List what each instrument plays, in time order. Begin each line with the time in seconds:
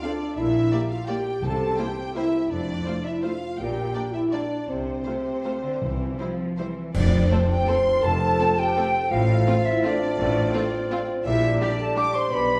0.02 viola section C4 A4, french horn section D4, violin section D5 F5
0.36 double bass section A#1, cello section A#2, french horn section E4, violin section E5
0.72 viola section A#3 G4, violin section D5
0.90 french horn section F4, violin section F5
1.07 viola section A#3 G4, french horn section G4, violin section D5 G5
1.42 double bass section C2, timpani C3, cello section C3, french horn section A4, violin section A5
1.77 viola section A#3 E4, french horn section G4, violin section C5 G5
2.15 viola section A#3 E4, french horn section E4, violin section C5 E5
2.50 double bass section F1, cello section F2, french horn section D4, violin section D5
2.85 viola section A3 F4, violin section C5
3.05 french horn section E4, violin section E5
3.22 viola section A3 F4, french horn section F4, violin section C5 F5
3.58 double bass section A#1, cello section A#2, french horn section G4, violin section G5
3.94 viola section A#3 D4, violin section D5
4.13 french horn section E4, violin section E5
4.31 viola section A#3 D4, french horn section D4, violin section D5
4.68 double bass section C2, cello section C3, french horn section C4, violin section C5
5.04 cello section C3, viola section A3 F4, violin section C5
5.44 viola section A3 F4, violin section C5
5.63 cello section D3
5.82 double bass section C2, timpani C3, cello section E3
6.19 cello section F3, viola section G3 E4, violin section C5
6.58 cello section E3, viola section G3 E4, violin section C5
6.95 double bass section F1, timpani F2, cello section F2, bassoon C4, french horn section D4, clarinet F4, violin section D5, flute D5, concert bass drum, crash
7.30 viola section A3 C4, french horn section C4, violin section A4 C5, flute C5
7.50 french horn section G4, violin section G5, flute G5
7.67 viola section A3 C4, violin section A4 C6, french horn section C5, flute C6
8.03 double bass section F1, cello section F2, french horn section A4, violin section A5, flute A5
8.39 viola section A3 C4, violin section A4
8.57 french horn section G4, violin section G5, flute G5
8.76 viola section A3 C4, violin section A4
9.10 double bass section A1, cello section A2, bassoon C4, french horn section F4, clarinet F4, violin section F5, flute F5
9.47 viola section A3 C4, violin section F4
9.65 french horn section E4, violin section E5, flute E5
9.84 viola section A3 C4, french horn section D4, violin section F4 D5, flute D5
10.18 double bass section A1, cello section A2
10.54 viola section A3 C4, violin section F4
10.90 viola section A3 C4, violin section F4
11.24 double bass section A#1, cello section A#2, bassoon D4, french horn section E4, clarinet G4, violin section E5, flute E5
11.59 viola section G3 D4, french horn section D4, violin section G4 D5, flute D5
11.78 french horn section A4, violin section A5, flute A5
11.96 viola section G3 D4, violin section G4 D6, french horn section D5, flute D6
12.14 french horn section C5, violin section C6, flute C6
12.30 double bass section B1, cello section B2, french horn section B4, violin section B5, flute B5